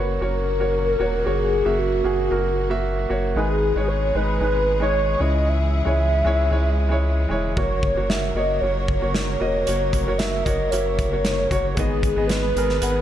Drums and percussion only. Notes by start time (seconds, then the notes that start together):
7.57 kick
7.83 kick
8.10 snare
8.88 kick
9.15 snare
9.67 closed hi-hat
9.93 kick, closed hi-hat
10.19 snare, closed hi-hat
10.46 kick, closed hi-hat
10.72 closed hi-hat
10.99 kick, closed hi-hat
11.25 snare, closed hi-hat
11.51 kick, closed hi-hat
11.77 kick, closed hi-hat
12.03 kick, closed hi-hat
12.29 snare, closed hi-hat
12.57 closed hi-hat
12.69 snare
12.82 closed hi-hat